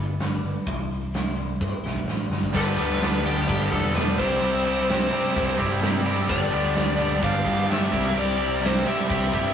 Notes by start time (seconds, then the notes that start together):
Already playing: G1 B3 D4 B4
0.00 G3
0.20 G3 B3 D4 B4, snare, open hi-hat
0.42 G1 B3 D4 B4, open hi-hat
0.66 C2 C3 E3 G3 C4 E4 C5, kick, open hi-hat
0.89 G3 C4 E4 C5, open hi-hat
1.13 C3 E3 G3 C4 E4 C5, snare, open hi-hat
1.36 G3 C4 E4 C5, open hi-hat
1.60 G2 G3 C4 E4 C5, kick
1.83 B1 C3 E3 G3 C4 E4 C5, snare
1.96 kick
2.07 A1 G3 C4 E4 C5, snare
2.30 G1 G3 C4 E4 C5, snare
2.43 kick
2.53 G1 G2 D3 G3 B3 D4 B4, kick, crash
2.76 D2 G2 D3 G3 B3 D4
3.00 G2 D3 G3 B3 D4, snare, crash
3.24 G2 D3 G3 B3 D4 G4
3.47 G1 G2 D3 G3 B3 D4 G4, kick, crash
3.71 E1 G2 D3 G3 B3 D4 A4, kick
3.94 G2 D3 G3 B3 D4 B4, snare, crash
4.17 C2 C3 G3 C4 E4 G4 C5, kick, crash
4.41 C3 G3 C4 E4 G4, crash
4.64 C3 G3 C4 E4 G4
4.88 C3 G3 C4 E4 G4, snare, crash
5.12 C3 G3 C4 E4 G4
5.34 C2 C3 G3 C4 E4 G4, kick, crash
5.57 G2 C3 G3 C4 E4 G4, kick
5.81 C3 G3 C4 E4 G4, snare, crash
6.05 C3 G3 C4 E4 G4
6.27 G1 G2 D3 G3 B3 D4 G4 D5, kick, crash
6.50 D2 G2 D3 G3 B3 D4 G4
6.75 G2 D3 G3 B3 D4 G4, snare, crash
6.97 G2 D3 G3 B3 D4 G4
7.20 G1 G2 D3 G3 B3 D4 G4, kick, crash
7.24 F5
7.44 G2 D3 G3 B3 D4 G4, kick
7.68 G2 D3 G3 B3 D4 G4 E5, crash
7.72 snare
7.90 C2 C3 G3 C4 E4 G4, kick
7.95 snare, crash
8.13 C3 G3 C4 E4 G4
8.18 D5, crash
8.37 C3 G3 C4 E4 G4
8.61 C3 G3 C4 E4 G4
8.65 C5, snare, crash
8.84 C3 G3 C4 E4 G4 E5
9.07 C2 C3 G3 C4 E4 G4, kick, crash
9.32 G2 C3 G3 C4 E4 G4, kick